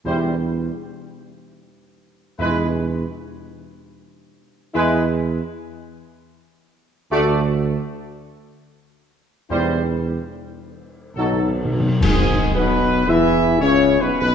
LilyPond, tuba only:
\new Staff \with { instrumentName = "Tuba" } { \clef bass \time 3/4 \key e \mixolydian \tempo 4 = 76 e,4 r2 | e,4 r2 | e,4 r2 | d,4 r2 |
e,4 r4 b,,4 | \key e \major \tuplet 3/2 { gis,,4 b,,8~ b,,8 e,4 } cis,8 b,,16 b,,16 | }